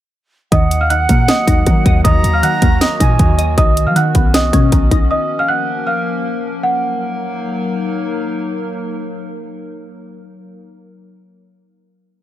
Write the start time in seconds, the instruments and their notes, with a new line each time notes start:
0.52 808-style bass D#2, synth pluck D#3, ambient pad D#3 F#3 A#3 F#4, celesta D#5 D#6, flute F#5, kick, closed hi-hat
0.71 closed hi-hat
0.81 celesta F5 F6
0.90 synth pluck D#3, celesta F#5 F#6, closed hi-hat
1.09 808-style bass A#2, synth pluck A#3, kick, closed hi-hat
1.28 celesta D#5 D#6, snare, closed hi-hat
1.47 808-style bass D#2, synth pluck D#4, kick, closed hi-hat
1.66 synth pluck D#3, 808-style bass D#3, kick, closed hi-hat
1.86 808-style bass D#2, synth pluck D#5, kick, closed hi-hat
2.04 808-style bass D#2, synth pluck D#3, celesta D#5 D#6, flute A#5, kick, closed hi-hat
2.24 808-style bass D#2, closed hi-hat
2.33 celesta F5 F6
2.43 synth pluck D#3, celesta F#5 F#6, closed hi-hat
2.62 808-style bass D#2, synth pluck A#3, kick, closed hi-hat
2.81 celesta D#5 D#6, snare, closed hi-hat
3.00 808-style bass A#2, synth pluck D#4, flute G#5, kick, closed hi-hat
3.19 808-style bass D#2, synth pluck D#3, kick, closed hi-hat
3.39 synth pluck D#5, closed hi-hat
3.58 808-style bass B1, synth pluck D#3, ambient pad B3 C#4, celesta D#5 D#6, kick, closed hi-hat
3.77 closed hi-hat
3.86 808-style bass F#3, celesta F5 F6
3.96 synth pluck D#3, celesta F#5 F#6, closed hi-hat
4.15 808-style bass B1, synth pluck B3, kick, closed hi-hat
4.34 celesta D#5 D#6, snare, closed hi-hat
4.53 808-style bass B2, synth pluck C#4, kick, closed hi-hat
4.72 808-style bass B1, synth pluck D#3, kick, closed hi-hat
4.91 808-style bass B1, synth pluck D#4, kick, closed hi-hat
5.11 ambient pad F3 A#3 A#4, celesta D#5 D#6
5.39 celesta F5 F6
5.48 celesta F#5 F#6
5.87 celesta F5 F6
6.63 ambient pad F#3 A#3 D#4 A#4, celesta F#5